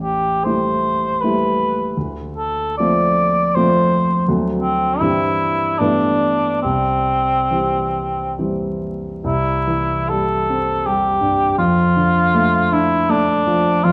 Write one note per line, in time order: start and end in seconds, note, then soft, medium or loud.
0.00 0.43 A1 soft
0.00 0.46 G4 soft
0.44 1.18 G3 soft
0.44 1.19 A3 soft
0.44 1.19 E4 soft
0.44 1.22 C5 soft
1.21 1.92 G3 soft
1.21 1.92 A3 soft
1.21 1.93 E4 soft
1.21 1.95 B4 soft
1.97 2.77 D2 soft
2.36 2.75 A4 soft
2.78 3.52 F3 soft
2.78 3.53 A3 soft
2.78 3.53 C4 soft
2.78 3.56 D5 medium
3.55 4.23 F3 soft
3.55 4.23 A3 soft
3.55 4.23 C4 soft
3.55 4.26 C5 soft
4.28 4.98 D2 soft
4.28 4.96 F#3 soft
4.28 4.97 A3 soft
4.28 4.97 C4 soft
4.61 5.01 C4 soft
4.99 5.77 G2 soft
4.99 5.75 E3 soft
4.99 5.76 G3 soft
4.99 5.76 C4 soft
4.99 5.80 E4 soft
5.79 6.61 G2 soft
5.79 6.60 E3 soft
5.79 6.60 A3 soft
5.79 6.60 B3 soft
5.79 6.61 D4 soft
6.62 7.48 C2 soft
6.62 8.34 C4 soft
7.51 8.34 E3 soft
7.51 8.35 G3 soft
7.51 8.35 C4 soft
8.39 9.20 E3 soft
8.39 9.20 G3 soft
8.39 9.21 C4 soft
9.24 11.54 C2 soft
9.24 10.11 E4 soft
9.67 10.34 E3 soft
10.09 10.71 G3 soft
10.09 10.88 A4 medium
10.50 11.07 C4 soft
10.86 11.44 G3 soft
10.86 11.58 G4 soft
11.21 11.58 G2 soft
11.58 13.80 F2 soft
11.58 12.74 F4 medium
11.97 12.57 D3 soft
12.35 12.95 A3 soft
12.72 13.31 D4 soft
12.72 13.12 E4 medium
13.09 13.69 A3 soft
13.09 13.85 D4 medium
13.47 13.84 F3 soft
13.84 13.92 F2 soft
13.84 13.92 F4 medium